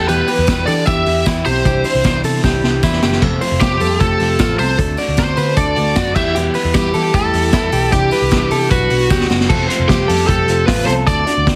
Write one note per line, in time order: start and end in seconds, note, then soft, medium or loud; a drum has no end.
0.00 0.21 E2 medium
0.08 0.28 E2 medium
0.08 0.28 B2 medium
0.08 0.29 E3 medium
0.08 0.28 G3 medium
0.08 0.63 B3 medium
0.08 0.27 B3 medium
0.08 0.28 G4 loud
0.08 0.27 G4 medium
0.08 0.69 B4 medium
0.08 closed hi-hat medium
0.28 0.47 E3 soft
0.28 0.47 G3 soft
0.28 0.47 B3 medium
0.28 0.48 G4 medium
0.28 0.65 B4 medium
0.28 open hi-hat medium
0.28 tambourine medium
0.38 0.46 E2 loud
0.47 0.67 E2 medium
0.47 0.68 B2 medium
0.47 0.68 E3 medium
0.47 0.68 G3 medium
0.47 0.67 B3 medium
0.47 0.66 G4 medium
0.47 kick loud
0.47 snare loud
0.47 closed hi-hat medium
0.47 tambourine medium
0.66 0.84 E3 loud
0.66 0.85 E3 soft
0.66 0.86 G3 medium
0.66 0.86 B3 soft
0.66 0.86 D4 medium
0.66 0.87 G4 medium
0.66 0.87 A4 medium
0.66 0.86 D5 loud
0.66 open hi-hat medium
0.66 tambourine medium
0.86 1.03 E2 loud
0.86 1.06 E3 medium
0.86 1.06 G3 medium
0.86 1.06 B3 medium
0.86 1.26 E4 medium
0.86 1.24 G4 medium
0.86 1.05 G4 medium
0.86 1.26 E5 loud
0.86 kick loud
0.86 closed hi-hat medium
0.86 tambourine medium
1.06 1.23 E2 medium
1.06 1.26 E3 soft
1.06 1.26 G3 soft
1.06 1.26 B3 medium
1.06 1.26 G4 medium
1.06 open hi-hat medium
1.06 tambourine soft
1.26 1.46 E2 medium
1.26 1.42 E2 medium
1.26 1.46 B2 medium
1.26 1.46 E3 medium
1.26 1.46 G3 medium
1.26 1.45 B3 medium
1.26 1.46 E4 medium
1.26 1.44 G4 medium
1.26 kick loud
1.26 snare loud
1.26 closed hi-hat medium
1.26 tambourine medium
1.45 1.62 B1 medium
1.45 1.64 E3 soft
1.45 1.65 G3 soft
1.45 1.65 B3 soft
1.45 2.20 C4 medium
1.45 1.65 G4 medium
1.45 2.20 C5 medium
1.45 open hi-hat medium
1.45 tambourine medium
1.65 1.81 C2 loud
1.65 1.85 C3 medium
1.65 1.85 E3 medium
1.65 1.85 G3 medium
1.65 1.84 D4 medium
1.65 1.83 E4 medium
1.65 1.85 G4 loud
1.65 kick loud
1.65 closed hi-hat medium
1.65 tambourine soft
1.84 2.03 G3 soft
1.84 2.03 D4 soft
1.84 2.03 E4 medium
1.84 2.22 C5 medium
1.84 open hi-hat medium
1.84 tambourine medium
1.95 2.03 C2 loud
2.03 2.21 C2 loud
2.03 2.24 C3 medium
2.03 2.24 E3 medium
2.03 2.24 G3 loud
2.03 2.23 D4 loud
2.03 2.22 E4 loud
2.03 kick loud
2.03 snare loud
2.03 closed hi-hat medium
2.03 tambourine medium
2.23 2.40 C3 loud
2.23 2.43 G3 medium
2.23 2.44 D4 medium
2.23 2.43 E4 medium
2.23 2.44 A4 medium
2.23 open hi-hat medium
2.23 tambourine soft
2.43 2.60 C2 loud
2.43 2.63 E3 medium
2.43 2.63 G3 medium
2.43 2.63 D4 medium
2.43 2.62 E4 medium
2.43 2.81 G4 medium
2.43 kick loud
2.43 snare medium
2.43 tambourine soft
2.63 2.79 C2 loud
2.63 2.82 G3 medium
2.63 2.83 D4 medium
2.63 2.83 E4 medium
2.63 snare medium
2.83 2.99 E2 medium
2.83 3.02 C3 loud
2.83 3.03 E3 medium
2.83 3.03 G3 medium
2.83 3.02 D4 medium
2.83 3.03 E4 medium
2.83 3.00 E4 loud
2.83 kick loud
2.83 snare medium
2.83 tambourine medium
2.92 snare medium
3.02 3.18 F#1 medium
3.02 3.22 G3 soft
3.02 3.22 D4 medium
3.02 3.22 E4 medium
3.02 3.22 G4 medium
3.02 snare loud
3.02 tambourine medium
3.12 snare medium
3.22 3.38 F1 loud
3.22 3.41 F2 medium
3.22 3.42 C3 medium
3.22 3.41 F3 medium
3.22 3.41 A3 medium
3.22 3.41 C4 medium
3.22 3.39 F4 loud
3.22 3.42 A4 loud
3.22 kick loud
3.22 splash medium
3.41 3.60 F3 soft
3.41 3.61 A3 medium
3.41 3.61 C4 medium
3.41 3.61 F4 medium
3.41 3.78 C5 medium
3.41 open hi-hat medium
3.41 tambourine medium
3.51 3.59 F1 medium
3.60 3.77 F1 loud
3.60 3.81 F2 medium
3.60 3.81 C3 medium
3.60 3.81 F3 medium
3.60 3.98 G3 medium
3.60 3.81 A3 medium
3.60 3.80 C4 medium
3.60 3.79 F4 medium
3.60 4.01 G4 medium
3.60 kick loud
3.60 snare loud
3.60 closed hi-hat medium
3.60 tambourine medium
3.80 3.97 F2 medium
3.80 3.98 F3 soft
3.80 3.99 A3 soft
3.80 4.00 C4 medium
3.80 4.00 F4 medium
3.80 4.01 A4 medium
3.80 open hi-hat medium
3.80 tambourine medium
4.00 4.17 F1 loud
4.00 4.20 F3 medium
4.00 4.20 A3 medium
4.00 4.55 A3 medium
4.00 4.19 C4 medium
4.00 4.18 F4 medium
4.00 4.37 G4 medium
4.00 4.55 A4 medium
4.00 kick loud
4.00 closed hi-hat medium
4.00 tambourine medium
4.19 4.36 F1 loud
4.19 4.39 F3 soft
4.19 4.39 A3 soft
4.19 4.39 C4 medium
4.19 4.39 F4 soft
4.19 open hi-hat medium
4.19 tambourine soft
4.39 4.56 A1 medium
4.39 4.59 F2 medium
4.39 4.59 C3 medium
4.39 4.59 F3 medium
4.39 4.59 A3 medium
4.39 4.58 C4 medium
4.39 4.59 F4 medium
4.39 4.57 F4 medium
4.39 kick loud
4.39 snare loud
4.39 closed hi-hat medium
4.39 tambourine medium
4.58 4.75 C2 medium
4.58 4.78 F3 soft
4.58 4.77 A3 soft
4.58 4.79 C4 medium
4.58 4.78 C4 medium
4.58 4.78 F4 medium
4.58 4.77 A4 medium
4.58 4.77 C5 medium
4.58 open hi-hat medium
4.58 tambourine medium
4.78 4.95 D2 loud
4.78 4.98 D3 medium
4.78 4.98 A3 medium
4.78 4.98 D4 medium
4.78 4.96 F#4 medium
4.78 4.98 A4 loud
4.78 kick loud
4.78 closed hi-hat medium
4.97 5.17 A3 soft
4.97 5.17 D4 medium
4.97 5.18 F#4 medium
4.97 5.35 D5 medium
4.97 open hi-hat medium
4.97 tambourine medium
5.08 5.16 D2 medium
5.17 5.34 D2 loud
5.17 5.37 D3 medium
5.17 5.38 A3 medium
5.17 5.55 C4 medium
5.17 5.37 D4 medium
5.17 5.36 F#4 medium
5.17 5.55 C5 medium
5.17 kick loud
5.17 snare loud
5.17 closed hi-hat medium
5.17 tambourine medium
5.37 5.53 D3 loud
5.37 5.57 A3 soft
5.37 5.58 D4 medium
5.37 5.57 F#4 medium
5.37 5.56 B4 medium
5.37 open hi-hat medium
5.37 tambourine medium
5.57 5.73 D2 loud
5.57 5.77 D3 medium
5.57 5.77 A3 medium
5.57 6.12 D4 medium
5.57 5.76 D4 medium
5.57 5.75 F#4 medium
5.57 5.94 A4 medium
5.57 6.15 D5 loud
5.57 kick loud
5.57 closed hi-hat medium
5.57 tambourine medium
5.76 5.93 D2 loud
5.76 5.96 A3 soft
5.76 5.97 D4 soft
5.76 5.96 F#4 medium
5.76 open hi-hat medium
5.96 6.12 F#2 loud
5.96 6.16 D3 medium
5.96 6.16 A3 medium
5.96 6.16 D4 medium
5.96 6.15 F#4 medium
5.96 kick loud
5.96 snare loud
5.96 closed hi-hat medium
5.96 tambourine medium
6.15 6.48 E2 loud
6.15 6.35 E3 soft
6.15 6.35 G3 soft
6.15 6.35 B3 soft
6.15 6.35 E4 medium
6.15 6.34 E4 medium
6.15 6.34 G4 medium
6.15 6.34 E5 medium
6.15 kick loud
6.15 tambourine medium
6.15 crash medium
6.35 6.55 E2 medium
6.35 6.55 B2 medium
6.35 6.55 E3 medium
6.35 6.55 G3 medium
6.35 6.54 B3 medium
6.35 6.54 E4 loud
6.35 6.55 G4 loud
6.35 closed hi-hat medium
6.35 tambourine soft
6.54 6.74 E3 soft
6.54 6.75 G3 medium
6.54 6.75 B3 medium
6.54 6.75 E4 medium
6.54 6.92 B4 medium
6.54 open hi-hat medium
6.54 tambourine soft
6.65 6.73 E2 loud
6.74 6.91 E2 loud
6.74 6.94 E2 medium
6.74 6.95 B2 medium
6.74 6.95 E3 medium
6.74 6.94 G3 medium
6.74 7.12 G3 medium
6.74 6.94 B3 medium
6.74 6.93 E4 medium
6.74 7.14 G4 medium
6.74 kick loud
6.74 snare loud
6.74 closed hi-hat medium
6.74 tambourine medium
6.94 7.10 E3 loud
6.94 7.13 E3 soft
6.94 7.14 G3 medium
6.94 7.14 B3 medium
6.94 7.14 E4 medium
6.94 7.14 A4 medium
6.94 open hi-hat medium
6.94 tambourine medium
7.13 7.30 E2 loud
7.13 7.34 E3 medium
7.13 7.33 G3 medium
7.13 7.89 A3 medium
7.13 7.32 B3 medium
7.13 7.32 E4 medium
7.13 7.51 G4 medium
7.13 7.92 A4 loud
7.13 kick loud
7.13 closed hi-hat medium
7.13 tambourine medium
7.33 7.50 E2 medium
7.33 7.52 E3 soft
7.33 7.52 G3 soft
7.33 7.53 B3 medium
7.33 7.53 E4 medium
7.33 open hi-hat medium
7.52 7.73 E2 medium
7.52 7.69 E2 medium
7.52 7.73 B2 medium
7.52 7.73 E3 medium
7.52 7.73 G3 medium
7.52 7.72 B3 medium
7.52 7.72 E4 medium
7.52 7.71 E4 medium
7.52 kick loud
7.52 snare loud
7.52 closed hi-hat medium
7.52 tambourine medium
7.72 7.89 B1 medium
7.72 7.91 E3 medium
7.72 7.91 G3 soft
7.72 7.92 B3 medium
7.72 7.92 E4 medium
7.72 7.91 G4 medium
7.72 open hi-hat medium
7.72 tambourine medium
7.92 8.09 C2 loud
7.92 8.12 C3 medium
7.92 8.12 E3 medium
7.92 8.12 G3 medium
7.92 8.68 G3 medium
7.92 8.11 D4 medium
7.92 8.10 E4 medium
7.92 8.70 G4 medium
7.92 8.12 G4 loud
7.92 kick loud
7.92 closed hi-hat medium
8.11 8.31 G3 soft
8.11 8.31 D4 soft
8.11 8.31 E4 medium
8.11 8.49 B4 medium
8.11 open hi-hat medium
8.11 tambourine soft
8.22 8.30 C2 medium
8.31 8.51 C3 medium
8.31 8.51 E3 medium
8.31 8.52 G3 medium
8.31 8.51 D4 medium
8.31 8.50 E4 medium
8.31 kick loud
8.31 snare loud
8.31 closed hi-hat medium
8.31 tambourine medium
8.51 8.67 C3 medium
8.51 8.70 G3 medium
8.51 8.70 D4 medium
8.51 8.71 E4 medium
8.51 8.71 A4 medium
8.51 open hi-hat medium
8.51 tambourine soft
8.70 8.87 B1 loud
8.70 8.90 F#3 medium
8.70 9.26 F#3 medium
8.70 8.91 B3 medium
8.70 8.90 D4 medium
8.70 9.26 F#4 medium
8.70 8.89 F#4 medium
8.70 9.08 B4 medium
8.70 kick loud
8.70 closed hi-hat medium
8.70 tambourine soft
8.90 9.07 B1 loud
8.90 9.10 B3 soft
8.90 9.10 D4 medium
8.90 9.10 F#4 medium
8.90 open hi-hat medium
8.90 tambourine soft
9.10 9.27 D2 medium
9.10 9.30 B2 medium
9.10 9.30 F#3 medium
9.10 9.30 B3 medium
9.10 9.30 D4 medium
9.10 9.28 F#4 medium
9.10 9.29 G4 medium
9.10 kick loud
9.10 snare medium
9.10 tambourine medium
9.21 snare medium
9.30 9.46 F#1 medium
9.30 9.50 B3 medium
9.30 9.50 D4 soft
9.30 9.50 F#4 medium
9.30 snare medium
9.30 tambourine medium
9.41 snare medium
9.49 9.66 F1 loud
9.49 9.70 F2 medium
9.49 9.70 C3 medium
9.49 9.70 F3 medium
9.49 9.69 A3 loud
9.49 9.69 C4 medium
9.49 9.68 F4 loud
9.49 9.68 A4 loud
9.49 kick loud
9.49 crash loud
9.69 9.88 F3 medium
9.69 9.88 A3 medium
9.69 9.89 C4 medium
9.69 9.89 F4 medium
9.69 10.06 C5 medium
9.69 hi-hat pedal medium
9.69 open hi-hat medium
9.79 9.87 F1 loud
9.88 10.05 F1 loud
9.88 10.09 F2 medium
9.88 10.09 C3 medium
9.88 10.09 F3 medium
9.88 10.26 G3 medium
9.88 10.09 A3 medium
9.88 10.08 C4 medium
9.88 10.07 F4 loud
9.88 10.27 G4 medium
9.88 kick loud
9.88 snare loud
9.88 hi-hat pedal medium
9.88 open hi-hat medium
10.08 10.25 F2 loud
10.08 10.26 F3 soft
10.08 10.27 A3 soft
10.08 10.28 C4 medium
10.08 10.28 F4 medium
10.08 10.28 A4 medium
10.08 hi-hat pedal medium
10.08 open hi-hat medium
10.27 10.45 F1 loud
10.27 10.48 F3 medium
10.27 10.48 A3 medium
10.27 10.65 A3 medium
10.27 10.47 C4 medium
10.27 10.46 F4 medium
10.27 10.65 G4 medium
10.27 10.69 A4 medium
10.27 kick loud
10.27 hi-hat pedal medium
10.27 open hi-hat medium
10.47 10.64 F1 loud
10.47 10.66 F3 soft
10.47 10.67 A3 soft
10.47 10.67 C4 medium
10.47 10.68 F4 medium
10.47 hi-hat pedal medium
10.47 open hi-hat medium
10.66 10.84 A1 loud
10.66 10.87 F2 medium
10.66 10.87 C3 medium
10.66 10.87 F3 medium
10.66 10.88 A3 medium
10.66 10.86 B3 medium
10.66 10.87 C4 medium
10.66 10.87 F4 medium
10.66 10.86 F4 medium
10.66 10.86 B4 loud
10.66 kick loud
10.66 snare loud
10.66 hi-hat pedal medium
10.66 open hi-hat medium
10.86 11.03 C2 medium
10.86 11.07 F3 soft
10.86 11.07 A3 soft
10.86 10.96 C4 medium
10.86 11.08 C4 soft
10.86 11.07 F4 medium
10.86 11.05 A4 medium
10.86 10.92 C5 loud
10.86 hi-hat pedal medium
10.86 open hi-hat medium
11.06 11.23 D2 loud
11.06 11.27 D3 medium
11.06 11.27 A3 medium
11.06 11.47 D4 medium
11.06 11.26 D4 medium
11.06 11.25 F#4 medium
11.06 11.26 A4 loud
11.06 11.46 D5 loud
11.06 kick loud
11.06 hi-hat pedal medium
11.06 open hi-hat medium
11.27 11.45 A3 soft
11.27 11.45 D4 medium
11.27 11.46 F#4 medium
11.27 11.55 D5 medium
11.27 hi-hat pedal medium
11.27 open hi-hat medium
11.37 11.45 D2 medium
11.45 11.55 D2 medium
11.45 11.55 D3 medium
11.45 11.55 A3 medium
11.45 11.55 D4 medium
11.45 11.55 F#4 medium
11.45 kick loud
11.45 snare loud
11.45 hi-hat pedal medium
11.45 open hi-hat medium